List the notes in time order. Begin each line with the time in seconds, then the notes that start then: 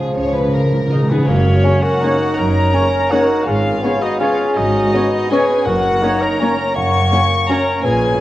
Already playing: C#3 F3 G#4
0.03 C#3
0.09 C#3
0.14 C#2 C#3 C#5
0.24 C#3
0.32 C#3 B4
0.40 C#3
0.48 C#3
0.53 C#3 A#4 F5
0.64 C#3
0.72 C#3
0.80 C#3
0.88 C#3 D#4 G#4 D#5 F5
0.95 C#3
1.03 C#3
1.09 C#3 B3 D#4 G#4 B4
1.18 C#3
1.27 F#1 F#2 A#3 C#4 F#4 C#5
1.64 C#3 A#3 C#4 C#5
1.83 F#4 A#4 F#5
2.02 C#3 A#3 C#4 D#4 C#5
2.37 F#1 F#2 A#4 C#5 A#5
2.73 C#3 A#3 C#4 C#5
3.12 C#3 A#3 C#4 D#4 F#4 A#4 C#5 F#5
3.47 G#1 G#2 C#4 F4 G#4 F5
3.83 C#3 B3 C#4 C#5
4.02 D#4 F#4 D#5
4.20 C#3 B3 C#4 F4 G#4 C#5 F5
4.57 G#1 G#2 D#4 F#4 D#5
4.93 C#3 B3 C#4 C#5
5.31 C#3 B3 C#4 G#4 B4 C#5 G#5
5.66 F#1 F#2 F#4 A#4 F#5
6.02 F#3 A#3 C#4 D#4 C#5
6.21 A#4 C#5 A#5
6.39 F#3 A#3 C#4 C#5
6.75 F#1 F#2 A#3 C#5 F#5 C#6
7.11 F#3 A#3 C#4 C#5
7.48 F#3 A#3 C#4 A#4 C#5 A#5
7.83 A#1 A#2 G#4 B4 G#5